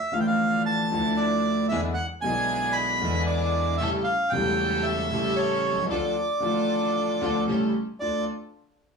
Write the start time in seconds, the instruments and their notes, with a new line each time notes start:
Already playing: bandoneon E5
0.12 grand piano A1 A2 D3 F3 A3, string section E3 D4, bandoneon F5
0.16 grand piano E3
0.20 bandoneon G5
0.27 bandoneon F5
0.66 bandoneon A5
0.91 grand piano D2 D3 F3 A3 E4, string section D4 E4
1.17 bandoneon D5
1.69 grand piano E2 D3 E3 G#3 B3 E4, string section D4 E4 G#4, bandoneon E5
1.94 bandoneon F#5
2.21 grand piano B1 B2 D3 G#3 B3, string section D4 E4 G#4, bandoneon G#5
2.27 grand piano E4
2.73 bandoneon B5
3.00 grand piano E2 D3 E3 G#3 B3, string section D4 E4 G#4
3.04 grand piano E4
3.27 bandoneon D5
3.78 grand piano A1 A2 C#3 G3 A3 E4, string section C#4 G4 A4, bandoneon E5
4.04 bandoneon F5
4.30 grand piano E1 E2 C#3 G3, string section C#4 G4 A4, bandoneon G5
4.34 grand piano A3 E4
4.83 bandoneon E5
5.10 grand piano A1 A2 C#3 G3 A3 E4, string section C#4 G4 A4
5.36 bandoneon C#5
5.71 grand piano B1
5.78 grand piano C2
5.83 grand piano C#2
5.90 grand piano D2 D3 F3 A3 F4, string section D4 F4 A4, bandoneon D5
6.40 grand piano A1 A2 D3 F3 A3, string section D4 F4 A4
6.44 grand piano F4
7.20 grand piano D2 D3 F3 A3 F4, string section D4 F4 A4
7.47 grand piano A1 A2 C#3 G3 A3 E4, string section C#4 G4 A4
8.00 grand piano D2 A3 D4 F4, string section D4 F4 A4, bandoneon D5